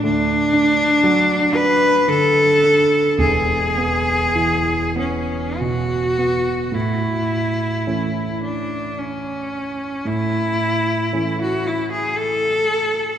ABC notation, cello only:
X:1
M:3/4
L:1/16
Q:1/4=55
K:A
V:1 name="Cello"
D6 B2 A4 | G6 C2 F4 | E6 D2 C4 | E4- E F E G A4 |]